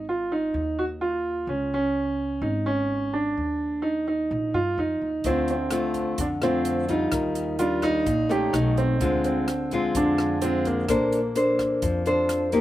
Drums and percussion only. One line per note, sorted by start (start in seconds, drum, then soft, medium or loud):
5.24 kick soft
5.24 closed hi-hat soft
5.48 closed hi-hat soft
5.71 cross-stick medium
5.71 closed hi-hat soft
5.94 kick soft
5.94 closed hi-hat soft
6.18 kick medium
6.18 closed hi-hat soft
6.42 cross-stick medium
6.42 closed hi-hat soft
6.65 closed hi-hat soft
6.89 kick soft
6.89 closed hi-hat soft
7.12 kick medium
7.12 cross-stick medium
7.12 closed hi-hat soft
7.35 closed hi-hat soft
7.59 closed hi-hat soft
7.82 kick soft
7.82 cross-stick soft
7.82 closed hi-hat soft
8.06 kick medium
8.06 closed hi-hat soft
8.31 closed hi-hat soft
8.54 cross-stick medium
8.54 closed hi-hat soft
8.77 kick soft
8.77 closed hi-hat soft
9.01 kick medium
9.01 closed hi-hat soft
9.24 closed hi-hat soft
9.48 cross-stick medium
9.48 closed hi-hat soft
9.71 kick soft
9.71 closed hi-hat soft
9.95 kick medium
9.95 closed hi-hat soft
10.18 cross-stick medium
10.18 closed hi-hat soft
10.42 closed hi-hat soft
10.65 kick soft
10.65 closed hi-hat soft
10.89 kick medium
10.89 cross-stick medium
10.89 closed hi-hat soft
11.12 closed hi-hat soft
11.36 closed hi-hat soft
11.59 kick soft
11.59 cross-stick medium
11.59 closed hi-hat soft
11.82 kick medium
11.82 closed hi-hat soft
12.06 closed hi-hat soft
12.29 cross-stick medium
12.29 closed hi-hat soft
12.52 kick soft
12.52 closed hi-hat soft